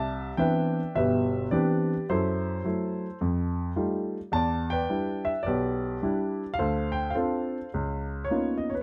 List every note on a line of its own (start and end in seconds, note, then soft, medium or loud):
0.00 0.31 C2 medium
0.00 0.93 D5 medium
0.00 0.38 E5 medium
0.00 0.40 A5 medium
0.37 0.79 E3 soft
0.37 0.79 B3 soft
0.37 0.79 C4 soft
0.37 0.80 D4 soft
0.37 0.96 B4 medium
0.37 0.94 E5 medium
0.37 0.97 G5 medium
0.95 1.45 G1 medium
0.95 1.45 B2 soft
0.95 1.51 G4 soft
0.95 1.51 B4 medium
0.95 1.54 E5 medium
1.51 1.92 E3 soft
1.51 1.92 B3 soft
1.51 1.93 C4 soft
1.51 1.93 D4 medium
1.51 2.05 G4 medium
1.51 2.05 B4 medium
1.51 2.10 D5 medium
2.09 2.58 F#2 medium
2.09 2.64 E4 soft
2.09 3.19 A4 medium
2.09 3.18 C5 medium
2.64 3.05 F#3 soft
2.64 3.05 A3 soft
2.64 3.05 E4 soft
3.21 3.70 F2 medium
3.76 4.17 G3 soft
3.76 4.17 A3 soft
3.76 4.17 D#4 soft
3.76 4.17 F4 soft
4.32 4.82 E2 medium
4.32 4.71 D5 medium
4.32 4.69 A5 medium
4.70 5.45 B4 medium
4.70 5.41 D5 medium
4.70 5.29 G5 medium
4.90 5.30 G3 soft
4.90 5.30 D4 soft
4.90 5.30 E4 soft
5.25 5.45 E5 medium
5.43 5.96 B1 medium
5.43 6.55 B4 soft
5.43 6.53 D5 medium
5.47 6.55 G4 soft
6.02 6.42 G3 soft
6.02 6.43 D4 soft
6.02 6.43 E4 medium
6.54 6.96 F5 medium
6.59 7.09 D2 medium
6.59 7.14 A4 medium
6.59 7.13 C5 medium
6.92 7.14 G5 medium
7.10 8.31 F5 medium
7.15 7.57 C4 soft
7.15 7.57 D4 soft
7.15 7.57 F4 soft
7.15 7.69 A4 medium
7.15 7.69 C5 soft
7.74 8.24 C#2 medium
8.25 8.54 C#5 medium
8.30 8.72 A#3 soft
8.30 8.72 B3 soft
8.30 8.72 C#4 soft
8.30 8.72 D#4 soft
8.30 8.72 F4 soft
8.58 8.70 D#5 medium
8.70 8.76 C#5 medium
8.75 8.82 B4 medium